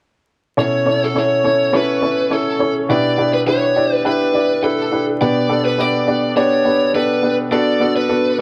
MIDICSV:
0, 0, Header, 1, 3, 480
1, 0, Start_track
1, 0, Tempo, 578258
1, 483, Time_signature, 4, 2, 24, 8
1, 6983, End_track
2, 0, Start_track
2, 0, Title_t, "Lead electric guitar"
2, 0, Program_c, 0, 29
2, 501, Note_on_c, 0, 73, 82
2, 863, Note_off_c, 0, 73, 0
2, 864, Note_on_c, 0, 69, 65
2, 977, Note_off_c, 0, 69, 0
2, 983, Note_on_c, 0, 73, 83
2, 1420, Note_off_c, 0, 73, 0
2, 1461, Note_on_c, 0, 71, 76
2, 1932, Note_on_c, 0, 69, 81
2, 1946, Note_off_c, 0, 71, 0
2, 2263, Note_off_c, 0, 69, 0
2, 2413, Note_on_c, 0, 74, 92
2, 2744, Note_off_c, 0, 74, 0
2, 2772, Note_on_c, 0, 71, 78
2, 2813, Note_off_c, 0, 71, 0
2, 2887, Note_on_c, 0, 73, 81
2, 3268, Note_off_c, 0, 73, 0
2, 3268, Note_on_c, 0, 71, 81
2, 3373, Note_off_c, 0, 71, 0
2, 3376, Note_on_c, 0, 71, 79
2, 3817, Note_off_c, 0, 71, 0
2, 3852, Note_on_c, 0, 69, 80
2, 4183, Note_off_c, 0, 69, 0
2, 4332, Note_on_c, 0, 74, 90
2, 4689, Note_off_c, 0, 74, 0
2, 4692, Note_on_c, 0, 71, 75
2, 4814, Note_off_c, 0, 71, 0
2, 4814, Note_on_c, 0, 74, 85
2, 5284, Note_off_c, 0, 74, 0
2, 5287, Note_on_c, 0, 73, 78
2, 5733, Note_off_c, 0, 73, 0
2, 5767, Note_on_c, 0, 71, 81
2, 6101, Note_off_c, 0, 71, 0
2, 6246, Note_on_c, 0, 74, 82
2, 6581, Note_off_c, 0, 74, 0
2, 6610, Note_on_c, 0, 71, 71
2, 6943, Note_off_c, 0, 71, 0
2, 6983, End_track
3, 0, Start_track
3, 0, Title_t, "Upright piano"
3, 0, Program_c, 1, 0
3, 475, Note_on_c, 1, 61, 74
3, 478, Note_on_c, 1, 47, 50
3, 478, Note_on_c, 1, 64, 65
3, 479, Note_on_c, 1, 69, 68
3, 480, Note_on_c, 1, 73, 82
3, 653, Control_c, 1, 64, 127
3, 678, Note_off_c, 1, 61, 0
3, 680, Note_off_c, 1, 64, 0
3, 680, Note_off_c, 1, 69, 0
3, 681, Note_off_c, 1, 73, 0
3, 712, Note_on_c, 1, 61, 61
3, 712, Note_on_c, 1, 64, 56
3, 714, Note_on_c, 1, 69, 56
3, 719, Note_on_c, 1, 73, 65
3, 916, Note_off_c, 1, 61, 0
3, 916, Note_off_c, 1, 64, 0
3, 918, Note_off_c, 1, 69, 0
3, 920, Note_off_c, 1, 73, 0
3, 952, Note_on_c, 1, 61, 58
3, 957, Note_on_c, 1, 64, 55
3, 958, Note_on_c, 1, 69, 55
3, 961, Note_on_c, 1, 73, 63
3, 1156, Note_off_c, 1, 61, 0
3, 1159, Note_off_c, 1, 64, 0
3, 1160, Note_off_c, 1, 69, 0
3, 1161, Note_off_c, 1, 73, 0
3, 1167, Note_off_c, 1, 47, 0
3, 1195, Note_on_c, 1, 61, 55
3, 1197, Note_on_c, 1, 64, 53
3, 1200, Note_on_c, 1, 73, 65
3, 1201, Note_on_c, 1, 69, 57
3, 1398, Note_off_c, 1, 61, 0
3, 1399, Note_off_c, 1, 64, 0
3, 1401, Note_off_c, 1, 69, 0
3, 1401, Note_off_c, 1, 73, 0
3, 1434, Note_on_c, 1, 61, 80
3, 1435, Note_on_c, 1, 64, 72
3, 1437, Note_on_c, 1, 69, 73
3, 1440, Note_on_c, 1, 73, 81
3, 1637, Note_off_c, 1, 61, 0
3, 1638, Note_off_c, 1, 64, 0
3, 1639, Note_off_c, 1, 69, 0
3, 1640, Note_off_c, 1, 73, 0
3, 1676, Note_on_c, 1, 64, 54
3, 1677, Note_on_c, 1, 61, 54
3, 1677, Note_on_c, 1, 69, 54
3, 1683, Note_on_c, 1, 73, 58
3, 1879, Note_off_c, 1, 61, 0
3, 1879, Note_off_c, 1, 64, 0
3, 1879, Note_off_c, 1, 69, 0
3, 1882, Note_off_c, 1, 73, 0
3, 1913, Note_on_c, 1, 61, 61
3, 1913, Note_on_c, 1, 64, 57
3, 1917, Note_on_c, 1, 69, 59
3, 1919, Note_on_c, 1, 73, 68
3, 2117, Note_off_c, 1, 61, 0
3, 2117, Note_off_c, 1, 64, 0
3, 2119, Note_off_c, 1, 69, 0
3, 2120, Note_off_c, 1, 73, 0
3, 2153, Note_on_c, 1, 61, 59
3, 2157, Note_on_c, 1, 64, 49
3, 2159, Note_on_c, 1, 69, 52
3, 2161, Note_on_c, 1, 73, 65
3, 2357, Note_off_c, 1, 61, 0
3, 2359, Note_off_c, 1, 64, 0
3, 2360, Note_off_c, 1, 69, 0
3, 2361, Note_off_c, 1, 73, 0
3, 2398, Note_on_c, 1, 62, 75
3, 2399, Note_on_c, 1, 64, 70
3, 2402, Note_on_c, 1, 47, 51
3, 2403, Note_on_c, 1, 67, 71
3, 2404, Note_on_c, 1, 71, 85
3, 2412, Control_c, 1, 64, 0
3, 2575, Control_c, 1, 64, 127
3, 2600, Note_off_c, 1, 62, 0
3, 2600, Note_off_c, 1, 64, 0
3, 2602, Note_off_c, 1, 67, 0
3, 2603, Note_off_c, 1, 71, 0
3, 2634, Note_on_c, 1, 62, 63
3, 2639, Note_on_c, 1, 64, 56
3, 2640, Note_on_c, 1, 71, 68
3, 2641, Note_on_c, 1, 67, 61
3, 2838, Note_off_c, 1, 62, 0
3, 2840, Note_off_c, 1, 64, 0
3, 2841, Note_off_c, 1, 67, 0
3, 2841, Note_off_c, 1, 71, 0
3, 2878, Note_on_c, 1, 64, 53
3, 2879, Note_on_c, 1, 62, 58
3, 2883, Note_on_c, 1, 67, 53
3, 2884, Note_on_c, 1, 71, 68
3, 3080, Note_off_c, 1, 64, 0
3, 3081, Note_off_c, 1, 62, 0
3, 3082, Note_off_c, 1, 67, 0
3, 3083, Note_off_c, 1, 71, 0
3, 3090, Note_off_c, 1, 47, 0
3, 3120, Note_on_c, 1, 62, 60
3, 3123, Note_on_c, 1, 64, 56
3, 3124, Note_on_c, 1, 67, 57
3, 3126, Note_on_c, 1, 74, 69
3, 3321, Note_off_c, 1, 62, 0
3, 3322, Note_off_c, 1, 64, 0
3, 3323, Note_off_c, 1, 67, 0
3, 3324, Note_off_c, 1, 74, 0
3, 3358, Note_on_c, 1, 62, 81
3, 3360, Note_on_c, 1, 64, 72
3, 3363, Note_on_c, 1, 67, 73
3, 3364, Note_on_c, 1, 71, 87
3, 3560, Note_off_c, 1, 62, 0
3, 3561, Note_off_c, 1, 64, 0
3, 3562, Note_off_c, 1, 67, 0
3, 3563, Note_off_c, 1, 71, 0
3, 3600, Note_on_c, 1, 62, 59
3, 3603, Note_on_c, 1, 64, 55
3, 3609, Note_on_c, 1, 67, 53
3, 3609, Note_on_c, 1, 74, 61
3, 3801, Note_off_c, 1, 62, 0
3, 3802, Note_off_c, 1, 64, 0
3, 3805, Note_off_c, 1, 67, 0
3, 3805, Note_off_c, 1, 74, 0
3, 3839, Note_on_c, 1, 64, 61
3, 3840, Note_on_c, 1, 62, 61
3, 3843, Note_on_c, 1, 67, 62
3, 3848, Note_on_c, 1, 71, 70
3, 4041, Note_off_c, 1, 62, 0
3, 4041, Note_off_c, 1, 64, 0
3, 4042, Note_off_c, 1, 67, 0
3, 4045, Note_off_c, 1, 71, 0
3, 4080, Note_on_c, 1, 62, 61
3, 4084, Note_on_c, 1, 64, 53
3, 4087, Note_on_c, 1, 67, 54
3, 4087, Note_on_c, 1, 71, 64
3, 4281, Note_off_c, 1, 62, 0
3, 4283, Note_off_c, 1, 64, 0
3, 4285, Note_off_c, 1, 67, 0
3, 4285, Note_off_c, 1, 71, 0
3, 4322, Note_on_c, 1, 59, 77
3, 4326, Note_on_c, 1, 62, 71
3, 4326, Note_on_c, 1, 67, 76
3, 4327, Note_on_c, 1, 47, 52
3, 4330, Note_on_c, 1, 71, 84
3, 4336, Control_c, 1, 64, 0
3, 4459, Control_c, 1, 64, 127
3, 4522, Note_off_c, 1, 59, 0
3, 4524, Note_off_c, 1, 62, 0
3, 4524, Note_off_c, 1, 67, 0
3, 4526, Note_off_c, 1, 71, 0
3, 4555, Note_on_c, 1, 59, 62
3, 4559, Note_on_c, 1, 62, 60
3, 4562, Note_on_c, 1, 67, 58
3, 4562, Note_on_c, 1, 69, 73
3, 4759, Note_off_c, 1, 59, 0
3, 4761, Note_off_c, 1, 62, 0
3, 4762, Note_off_c, 1, 67, 0
3, 4762, Note_off_c, 1, 69, 0
3, 4798, Note_on_c, 1, 62, 57
3, 4799, Note_on_c, 1, 59, 62
3, 4803, Note_on_c, 1, 67, 55
3, 4807, Note_on_c, 1, 71, 70
3, 5000, Note_off_c, 1, 62, 0
3, 5001, Note_off_c, 1, 59, 0
3, 5003, Note_off_c, 1, 67, 0
3, 5005, Note_off_c, 1, 71, 0
3, 5013, Note_off_c, 1, 47, 0
3, 5037, Note_on_c, 1, 59, 61
3, 5043, Note_on_c, 1, 62, 58
3, 5044, Note_on_c, 1, 67, 56
3, 5047, Note_on_c, 1, 74, 67
3, 5240, Note_off_c, 1, 59, 0
3, 5243, Note_off_c, 1, 62, 0
3, 5243, Note_off_c, 1, 67, 0
3, 5245, Note_off_c, 1, 74, 0
3, 5281, Note_on_c, 1, 62, 72
3, 5283, Note_on_c, 1, 59, 80
3, 5285, Note_on_c, 1, 67, 76
3, 5285, Note_on_c, 1, 74, 88
3, 5482, Note_off_c, 1, 62, 0
3, 5483, Note_off_c, 1, 59, 0
3, 5484, Note_off_c, 1, 67, 0
3, 5484, Note_off_c, 1, 74, 0
3, 5519, Note_on_c, 1, 59, 59
3, 5521, Note_on_c, 1, 62, 52
3, 5522, Note_on_c, 1, 67, 53
3, 5526, Note_on_c, 1, 71, 65
3, 5721, Note_off_c, 1, 59, 0
3, 5722, Note_off_c, 1, 62, 0
3, 5722, Note_off_c, 1, 67, 0
3, 5724, Note_off_c, 1, 71, 0
3, 5763, Note_on_c, 1, 59, 62
3, 5768, Note_on_c, 1, 62, 63
3, 5771, Note_on_c, 1, 67, 57
3, 5772, Note_on_c, 1, 69, 68
3, 5963, Note_off_c, 1, 59, 0
3, 5966, Note_off_c, 1, 62, 0
3, 5967, Note_off_c, 1, 67, 0
3, 5967, Note_off_c, 1, 69, 0
3, 5998, Note_on_c, 1, 59, 58
3, 5999, Note_on_c, 1, 62, 53
3, 6001, Note_on_c, 1, 67, 54
3, 6002, Note_on_c, 1, 71, 61
3, 6201, Note_off_c, 1, 59, 0
3, 6201, Note_off_c, 1, 62, 0
3, 6202, Note_off_c, 1, 67, 0
3, 6203, Note_off_c, 1, 71, 0
3, 6235, Note_on_c, 1, 59, 78
3, 6237, Note_on_c, 1, 62, 74
3, 6239, Note_on_c, 1, 66, 68
3, 6241, Note_on_c, 1, 69, 86
3, 6255, Control_c, 1, 64, 0
3, 6379, Control_c, 1, 64, 127
3, 6439, Note_off_c, 1, 59, 0
3, 6440, Note_off_c, 1, 62, 0
3, 6441, Note_off_c, 1, 66, 0
3, 6442, Note_off_c, 1, 69, 0
3, 6475, Note_on_c, 1, 59, 64
3, 6479, Note_on_c, 1, 62, 59
3, 6483, Note_on_c, 1, 66, 57
3, 6486, Note_on_c, 1, 69, 70
3, 6679, Note_off_c, 1, 59, 0
3, 6681, Note_off_c, 1, 62, 0
3, 6683, Note_off_c, 1, 66, 0
3, 6685, Note_off_c, 1, 69, 0
3, 6716, Note_on_c, 1, 59, 58
3, 6717, Note_on_c, 1, 62, 57
3, 6718, Note_on_c, 1, 69, 67
3, 6720, Note_on_c, 1, 66, 58
3, 6919, Note_off_c, 1, 59, 0
3, 6920, Note_off_c, 1, 62, 0
3, 6921, Note_off_c, 1, 69, 0
3, 6922, Note_off_c, 1, 66, 0
3, 6983, End_track
0, 0, End_of_file